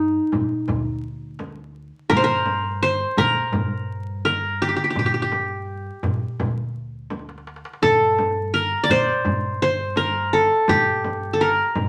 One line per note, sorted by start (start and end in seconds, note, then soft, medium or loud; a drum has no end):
0.00 0.16 G2 medium
0.00 0.97 D#4 soft
0.14 darbuka ka soft
0.32 0.47 G2 medium
0.32 darbuka dum medium
0.32 frame drum medium
0.68 1.89 D2 medium
0.68 darbuka dum medium
0.68 frame drum medium
0.85 darbuka ka soft
1.39 darbuka tek medium
1.39 frame drum medium
1.75 darbuka ka soft
2.10 3.01 G2 medium
2.10 2.23 A#4 medium
2.10 darbuka dum medium
2.10 frame drum medium
2.17 2.82 C5 medium
2.24 3.18 A#4 medium
2.28 darbuka ka soft
2.45 darbuka tek medium
2.45 frame drum medium
2.83 3.88 C5 medium
3.17 3.48 A#2 medium
3.17 4.25 A#4 medium
3.17 darbuka dum medium
3.17 frame drum medium
3.53 4.74 G2 medium
3.53 frame drum medium
3.53 darbuka dum medium
3.71 darbuka ka soft
4.25 5.38 A#4 medium
4.25 darbuka tek medium
4.25 frame drum medium
4.62 4.68 G4 medium
4.69 4.76 G4 soft
4.76 4.84 G4 soft
4.84 4.90 G4 soft
4.90 4.99 G4 soft
4.95 5.87 G2 medium
4.95 5.05 G4 soft
4.95 frame drum medium
4.95 darbuka dum medium
5.06 5.14 G4 medium
5.14 5.22 G4 soft
5.22 6.48 G4 medium
5.32 darbuka tek medium
5.32 frame drum medium
5.50 darbuka ka soft
5.68 darbuka ka soft
5.86 darbuka ka soft
6.03 6.19 G2 medium
6.03 frame drum medium
6.03 darbuka dum medium
6.39 7.61 D2 medium
6.39 darbuka dum loud
6.39 frame drum medium
6.57 darbuka ka soft
6.75 darbuka ka soft
7.10 darbuka tek soft
7.10 frame drum medium
7.19 darbuka ka soft
7.29 darbuka tek medium
7.38 darbuka ka medium
7.47 darbuka tek medium
7.56 darbuka ka medium
7.65 darbuka tek medium
7.73 darbuka ka medium
7.82 8.73 G2 medium
7.82 8.60 A4 medium
7.82 darbuka dum medium
7.82 frame drum medium
8.01 darbuka ka soft
8.18 darbuka tek medium
8.18 frame drum medium
8.54 9.67 A#4 medium
8.73 darbuka ka soft
8.84 9.82 D5 medium
8.89 9.19 A#2 medium
8.89 9.62 C5 medium
8.89 frame drum medium
8.89 darbuka dum medium
9.25 10.46 G2 medium
9.25 frame drum medium
9.25 darbuka dum medium
9.44 darbuka ka soft
9.62 10.68 C5 medium
9.96 10.39 A#4 medium
9.96 darbuka tek medium
9.96 frame drum medium
10.33 11.33 A4 medium
10.68 11.59 G2 medium
10.68 11.89 G4 medium
10.68 frame drum medium
10.68 darbuka dum medium
10.87 darbuka ka soft
11.04 darbuka tek medium
11.04 frame drum medium
11.33 11.47 A4 medium
11.41 11.89 A#4 medium
11.75 11.89 G2 medium
11.75 frame drum medium
11.75 darbuka dum medium